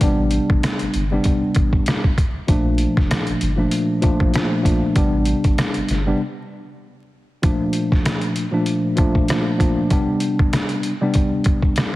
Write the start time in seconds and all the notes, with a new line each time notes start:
0.01 A1 C3 G3 B3 D4, kick, closed hi-hat
0.31 closed hi-hat
0.50 A1, kick
0.63 cross-stick, snare, closed hi-hat
0.79 G1, closed hi-hat
0.94 G1, closed hi-hat
1.11 C3 G3 B3 D4
1.24 kick, closed hi-hat
1.55 A1, kick, closed hi-hat
1.73 kick
1.86 cross-stick, snare, closed hi-hat
2.04 kick
2.18 kick, closed hi-hat
2.47 A#1 A#2 F3 A3 D4, kick, closed hi-hat
2.78 closed hi-hat
2.97 F1, kick, snare
3.11 cross-stick, snare, closed hi-hat
3.27 G1, closed hi-hat
3.41 G1, closed hi-hat
3.57 A#2 F3 A3 D4
3.71 closed hi-hat
4.01 A#2 F3 A3 D4, kick, closed hi-hat
4.20 A1, kick
4.33 A#2 F3 A3 D4, cross-stick, snare, closed hi-hat
4.63 A#1 A#2 F3 A3 D4, kick, closed hi-hat
4.96 A1 C3 G3 B3 D4, kick, closed hi-hat
5.25 closed hi-hat
5.44 A1, kick, closed hi-hat
5.58 cross-stick, snare, closed hi-hat
5.74 G1, closed hi-hat
5.88 G1, snare, closed hi-hat
6.06 C3 G3 B3 D4
7.42 A#2 F3 A3 D4, kick, closed hi-hat
7.73 closed hi-hat
7.92 kick, snare
8.05 cross-stick, snare, closed hi-hat
8.22 closed hi-hat
8.36 closed hi-hat
8.51 A#2 F3 A3 D4
8.66 closed hi-hat
8.96 A#2 F3 A3 D4, kick, closed hi-hat
9.15 kick
9.28 A#2 F3 A3 D4, cross-stick, snare, closed hi-hat
9.58 A#2 F3 A3 D4, kick, closed hi-hat
9.90 C3 G3 B3 D4, kick, closed hi-hat
10.20 closed hi-hat
10.39 kick
10.53 cross-stick, snare, closed hi-hat
10.69 closed hi-hat
10.83 closed hi-hat
11.01 C3 G3 B3 D4
11.14 kick, closed hi-hat
11.44 kick, closed hi-hat
11.62 kick
11.76 cross-stick, snare, closed hi-hat